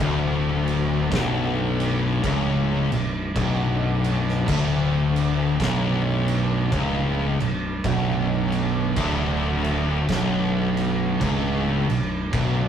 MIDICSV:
0, 0, Header, 1, 5, 480
1, 0, Start_track
1, 0, Key_signature, 2, "minor"
1, 0, Tempo, 1121495
1, 1437, Time_signature, 4, 2, 24, 8
1, 5428, End_track
2, 0, Start_track
2, 0, Title_t, "Tonewheel organ"
2, 0, Program_c, 0, 16
2, 0, Note_on_c, 0, 54, 65
2, 0, Note_on_c, 0, 57, 62
2, 0, Note_on_c, 0, 62, 71
2, 5428, Note_off_c, 0, 54, 0
2, 5428, Note_off_c, 0, 57, 0
2, 5428, Note_off_c, 0, 62, 0
2, 5428, End_track
3, 0, Start_track
3, 0, Title_t, "Distorted electric guitar"
3, 0, Program_c, 1, 30
3, 0, Note_on_c, 1, 38, 112
3, 472, Note_off_c, 1, 38, 0
3, 476, Note_on_c, 1, 35, 106
3, 950, Note_off_c, 1, 35, 0
3, 956, Note_on_c, 1, 37, 106
3, 1238, Note_off_c, 1, 37, 0
3, 1252, Note_on_c, 1, 35, 84
3, 1401, Note_off_c, 1, 35, 0
3, 1439, Note_on_c, 1, 35, 102
3, 1912, Note_off_c, 1, 35, 0
3, 1917, Note_on_c, 1, 38, 105
3, 2391, Note_off_c, 1, 38, 0
3, 2394, Note_on_c, 1, 35, 109
3, 2870, Note_off_c, 1, 35, 0
3, 2879, Note_on_c, 1, 37, 106
3, 3160, Note_off_c, 1, 37, 0
3, 3169, Note_on_c, 1, 35, 80
3, 3320, Note_off_c, 1, 35, 0
3, 3359, Note_on_c, 1, 35, 109
3, 3841, Note_off_c, 1, 35, 0
3, 3841, Note_on_c, 1, 38, 111
3, 4312, Note_off_c, 1, 38, 0
3, 4319, Note_on_c, 1, 35, 107
3, 4791, Note_off_c, 1, 35, 0
3, 4798, Note_on_c, 1, 37, 101
3, 5078, Note_off_c, 1, 37, 0
3, 5087, Note_on_c, 1, 35, 79
3, 5238, Note_off_c, 1, 35, 0
3, 5274, Note_on_c, 1, 35, 112
3, 5428, Note_off_c, 1, 35, 0
3, 5428, End_track
4, 0, Start_track
4, 0, Title_t, "Fingered electric bass"
4, 0, Program_c, 2, 33
4, 0, Note_on_c, 2, 26, 88
4, 461, Note_off_c, 2, 26, 0
4, 479, Note_on_c, 2, 23, 98
4, 941, Note_off_c, 2, 23, 0
4, 959, Note_on_c, 2, 25, 91
4, 1231, Note_off_c, 2, 25, 0
4, 1250, Note_on_c, 2, 23, 80
4, 1425, Note_off_c, 2, 23, 0
4, 1437, Note_on_c, 2, 23, 97
4, 1900, Note_off_c, 2, 23, 0
4, 1917, Note_on_c, 2, 26, 89
4, 2380, Note_off_c, 2, 26, 0
4, 2398, Note_on_c, 2, 23, 92
4, 2860, Note_off_c, 2, 23, 0
4, 2876, Note_on_c, 2, 25, 94
4, 3150, Note_off_c, 2, 25, 0
4, 3170, Note_on_c, 2, 23, 77
4, 3345, Note_off_c, 2, 23, 0
4, 3357, Note_on_c, 2, 23, 100
4, 3819, Note_off_c, 2, 23, 0
4, 3838, Note_on_c, 2, 26, 89
4, 4300, Note_off_c, 2, 26, 0
4, 4319, Note_on_c, 2, 23, 89
4, 4780, Note_off_c, 2, 23, 0
4, 4798, Note_on_c, 2, 25, 96
4, 5070, Note_off_c, 2, 25, 0
4, 5093, Note_on_c, 2, 23, 76
4, 5265, Note_off_c, 2, 23, 0
4, 5278, Note_on_c, 2, 23, 91
4, 5428, Note_off_c, 2, 23, 0
4, 5428, End_track
5, 0, Start_track
5, 0, Title_t, "Drums"
5, 1, Note_on_c, 9, 49, 83
5, 44, Note_off_c, 9, 49, 0
5, 289, Note_on_c, 9, 49, 62
5, 332, Note_off_c, 9, 49, 0
5, 478, Note_on_c, 9, 36, 102
5, 479, Note_on_c, 9, 49, 75
5, 487, Note_on_c, 9, 38, 105
5, 521, Note_off_c, 9, 36, 0
5, 522, Note_off_c, 9, 49, 0
5, 530, Note_off_c, 9, 38, 0
5, 771, Note_on_c, 9, 49, 63
5, 814, Note_off_c, 9, 49, 0
5, 958, Note_on_c, 9, 36, 112
5, 959, Note_on_c, 9, 49, 87
5, 1001, Note_off_c, 9, 36, 0
5, 1002, Note_off_c, 9, 49, 0
5, 1249, Note_on_c, 9, 49, 61
5, 1292, Note_off_c, 9, 49, 0
5, 1437, Note_on_c, 9, 36, 110
5, 1438, Note_on_c, 9, 49, 81
5, 1480, Note_off_c, 9, 36, 0
5, 1481, Note_off_c, 9, 49, 0
5, 1731, Note_on_c, 9, 49, 63
5, 1773, Note_off_c, 9, 49, 0
5, 1834, Note_on_c, 9, 38, 33
5, 1877, Note_off_c, 9, 38, 0
5, 1917, Note_on_c, 9, 36, 118
5, 1921, Note_on_c, 9, 49, 96
5, 1960, Note_off_c, 9, 36, 0
5, 1964, Note_off_c, 9, 49, 0
5, 2209, Note_on_c, 9, 49, 68
5, 2252, Note_off_c, 9, 49, 0
5, 2396, Note_on_c, 9, 36, 99
5, 2398, Note_on_c, 9, 49, 78
5, 2405, Note_on_c, 9, 38, 105
5, 2439, Note_off_c, 9, 36, 0
5, 2440, Note_off_c, 9, 49, 0
5, 2448, Note_off_c, 9, 38, 0
5, 2688, Note_on_c, 9, 49, 60
5, 2730, Note_off_c, 9, 49, 0
5, 2876, Note_on_c, 9, 36, 103
5, 2878, Note_on_c, 9, 49, 74
5, 2919, Note_off_c, 9, 36, 0
5, 2920, Note_off_c, 9, 49, 0
5, 3168, Note_on_c, 9, 49, 54
5, 3211, Note_off_c, 9, 49, 0
5, 3356, Note_on_c, 9, 36, 105
5, 3356, Note_on_c, 9, 49, 76
5, 3399, Note_off_c, 9, 36, 0
5, 3399, Note_off_c, 9, 49, 0
5, 3647, Note_on_c, 9, 49, 60
5, 3690, Note_off_c, 9, 49, 0
5, 3837, Note_on_c, 9, 36, 113
5, 3838, Note_on_c, 9, 49, 83
5, 3880, Note_off_c, 9, 36, 0
5, 3881, Note_off_c, 9, 49, 0
5, 4128, Note_on_c, 9, 49, 63
5, 4171, Note_off_c, 9, 49, 0
5, 4317, Note_on_c, 9, 36, 99
5, 4317, Note_on_c, 9, 49, 79
5, 4325, Note_on_c, 9, 38, 97
5, 4360, Note_off_c, 9, 36, 0
5, 4360, Note_off_c, 9, 49, 0
5, 4368, Note_off_c, 9, 38, 0
5, 4610, Note_on_c, 9, 49, 60
5, 4653, Note_off_c, 9, 49, 0
5, 4798, Note_on_c, 9, 36, 109
5, 4799, Note_on_c, 9, 49, 84
5, 4841, Note_off_c, 9, 36, 0
5, 4842, Note_off_c, 9, 49, 0
5, 5092, Note_on_c, 9, 49, 63
5, 5135, Note_off_c, 9, 49, 0
5, 5277, Note_on_c, 9, 36, 106
5, 5277, Note_on_c, 9, 49, 78
5, 5320, Note_off_c, 9, 36, 0
5, 5320, Note_off_c, 9, 49, 0
5, 5428, End_track
0, 0, End_of_file